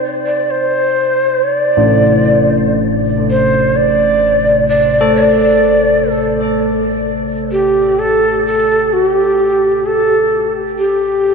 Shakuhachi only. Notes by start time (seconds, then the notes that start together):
0.26 D5
0.50 C5
1.44 D5
3.31 C5
3.76 D5
4.69 D5
5.16 D5
6.11 A4
7.52 G4
7.99 A4
8.46 A4
8.93 F#4
9.05 G4
9.86 A4
10.79 G4